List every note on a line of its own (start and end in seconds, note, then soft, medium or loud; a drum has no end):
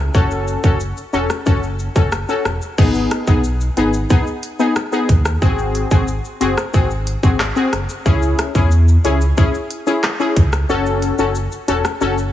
0.14 0.56 F#1 loud
0.14 0.60 C#4 medium
0.14 0.60 F#4 medium
0.14 0.60 A4 loud
0.14 kick loud
0.14 shaker medium
0.31 shaker soft
0.48 shaker medium
0.64 0.92 F#1 loud
0.64 0.78 C#4 medium
0.64 0.78 F#4 medium
0.64 0.78 A4 medium
0.64 kick medium
0.64 shaker medium
0.80 shaker medium
0.97 shaker medium
1.13 1.27 E1 medium
1.13 1.27 C#4 medium
1.13 1.28 F#4 medium
1.13 1.28 A4 medium
1.13 shaker medium
1.30 cross-stick medium
1.30 shaker medium
1.46 1.88 F#1 loud
1.46 1.60 C#4 medium
1.46 1.61 F#4 medium
1.46 1.61 A4 loud
1.46 kick medium
1.46 shaker medium
1.63 shaker soft
1.79 shaker medium
1.95 2.24 F#1 loud
1.95 2.10 C#4 medium
1.95 2.10 F#4 medium
1.95 2.10 A4 medium
1.95 kick loud
1.95 shaker medium
2.12 cross-stick loud
2.12 shaker medium
2.29 2.43 C#4 medium
2.29 2.43 F#4 medium
2.29 2.43 A4 medium
2.29 shaker medium
2.45 2.59 E1 loud
2.45 cross-stick medium
2.45 shaker medium
2.62 shaker medium
2.78 3.06 G#1 loud
2.78 3.24 B3 medium
2.78 3.24 D#4 medium
2.78 3.24 G#4 loud
2.78 kick loud
2.78 crash medium
2.78 shaker medium
2.95 shaker soft
3.11 cross-stick medium
3.11 closed hi-hat medium
3.11 shaker medium
3.27 3.69 B1 medium
3.27 3.42 B3 medium
3.27 3.42 D#4 medium
3.27 3.42 G#4 medium
3.27 kick loud
3.27 shaker medium
3.44 shaker medium
3.61 shaker medium
3.77 4.05 G#1 loud
3.77 3.91 B3 medium
3.77 3.91 D#4 medium
3.77 3.92 G#4 medium
3.77 closed hi-hat medium
3.77 shaker medium
3.94 shaker medium
4.10 4.24 B3 medium
4.10 4.24 D#4 medium
4.10 4.25 G#4 loud
4.10 kick loud
4.10 shaker medium
4.27 shaker soft
4.43 closed hi-hat medium
4.43 shaker medium
4.59 4.74 B3 medium
4.59 4.74 D#4 medium
4.59 4.74 G#4 medium
4.59 shaker medium
4.76 cross-stick loud
4.76 shaker medium
4.92 5.07 B3 medium
4.92 5.07 D#4 medium
4.92 5.07 G#4 medium
4.92 shaker medium
5.09 5.37 D#2 medium
5.09 kick medium
5.09 closed hi-hat medium
5.09 shaker medium
5.25 cross-stick medium
5.25 shaker medium
5.42 5.84 G#1 loud
5.42 5.87 C4 loud
5.42 5.88 F#4 medium
5.42 5.88 G#4 loud
5.42 kick loud
5.42 shaker medium
5.59 shaker soft
5.75 closed hi-hat medium
5.75 shaker medium
5.91 6.19 G#1 loud
5.91 6.05 C4 medium
5.91 6.06 F#4 medium
5.91 6.06 G#4 medium
5.91 kick medium
5.91 shaker medium
6.08 shaker medium
6.25 shaker medium
6.41 6.55 F#1 medium
6.41 6.55 C4 medium
6.41 6.55 F#4 medium
6.41 6.55 G#4 medium
6.41 closed hi-hat medium
6.41 shaker soft
6.58 cross-stick medium
6.58 shaker medium
6.74 7.16 G#1 loud
6.74 6.88 C4 loud
6.74 6.88 F#4 medium
6.74 6.88 G#4 loud
6.74 kick loud
6.74 shaker medium
6.91 shaker soft
7.07 closed hi-hat medium
7.07 shaker medium
7.23 7.51 G#1 medium
7.23 7.37 C4 medium
7.23 7.37 F#4 medium
7.23 7.38 G#4 medium
7.23 kick loud
7.23 shaker medium
7.40 cross-stick loud
7.40 clap loud
7.40 shaker medium
7.56 7.70 C4 medium
7.56 7.71 F#4 medium
7.56 7.71 G#4 medium
7.56 shaker medium
7.73 7.87 F#1 medium
7.73 cross-stick medium
7.73 closed hi-hat medium
7.73 shaker medium
7.89 shaker medium
8.06 8.34 C#2 loud
8.06 8.51 C#4 loud
8.06 8.51 E4 medium
8.06 8.52 G#4 loud
8.06 kick loud
8.06 shaker medium
8.22 shaker medium
8.39 cross-stick medium
8.39 closed hi-hat medium
8.39 shaker medium
8.55 8.97 E2 medium
8.55 8.69 C#4 medium
8.55 8.69 E4 medium
8.55 8.70 G#4 medium
8.55 kick medium
8.55 shaker medium
8.71 shaker medium
8.88 shaker medium
9.04 9.32 C#2 medium
9.04 9.19 C#4 medium
9.04 9.19 E4 medium
9.04 9.19 G#4 medium
9.04 closed hi-hat medium
9.04 shaker medium
9.21 shaker medium
9.37 9.52 C#4 medium
9.37 9.52 E4 medium
9.37 9.52 G#4 loud
9.37 kick loud
9.37 shaker medium
9.54 shaker soft
9.71 closed hi-hat medium
9.71 shaker medium
9.87 10.01 C#4 medium
9.87 10.01 E4 medium
9.87 10.01 G#4 medium
9.87 shaker medium
10.03 cross-stick loud
10.03 clap loud
10.03 shaker medium
10.20 10.34 C#4 medium
10.20 10.34 E4 medium
10.20 10.34 G#4 medium
10.20 shaker medium
10.36 10.64 C#2 medium
10.36 kick medium
10.36 closed hi-hat medium
10.36 shaker medium
10.53 cross-stick medium
10.53 shaker medium
10.69 11.11 F#1 loud
10.69 11.15 C#4 loud
10.69 11.15 F#4 medium
10.69 11.15 A4 loud
10.69 shaker medium
10.86 shaker soft
11.02 closed hi-hat medium
11.02 shaker medium
11.19 11.47 F#1 loud
11.19 11.33 C#4 medium
11.19 11.33 F#4 medium
11.19 11.33 A4 medium
11.19 shaker medium
11.35 shaker medium
11.52 shaker medium
11.68 11.82 E1 loud
11.68 11.82 C#4 medium
11.68 11.83 F#4 medium
11.68 11.83 A4 medium
11.68 closed hi-hat medium
11.68 shaker medium
11.85 cross-stick medium
11.85 shaker medium
12.01 12.32 F#1 loud
12.01 12.15 C#4 medium
12.01 12.16 F#4 medium
12.01 12.16 A4 loud
12.01 shaker medium
12.18 shaker soft